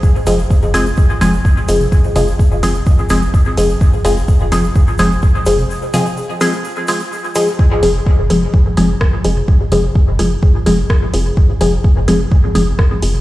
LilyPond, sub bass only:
\new Staff \with { instrumentName = "Sub bass" } { \clef bass \time 4/4 \key f \minor \tempo 4 = 127 r8 f,,16 r8 f,,16 f,,16 r8. f,,16 r8. f,,16 r16 | r8 f,,16 r8 f,,16 f,,16 r8. f,,16 r8. f,,16 r16 | r8 f,,16 r8 f,,16 f,,16 r8. f,,16 r8. f,,16 r16 | r1 |
r8 f,,16 r8 f,,16 f,,16 r8. f,,16 r8. f,,16 r16 | r8 f,,16 r8 f,,16 f,,16 r8. f,,16 r8. f,,16 r16 | r8 f,,16 r8 f,,16 f,,16 r8. f,,16 r8. f,,16 r16 | }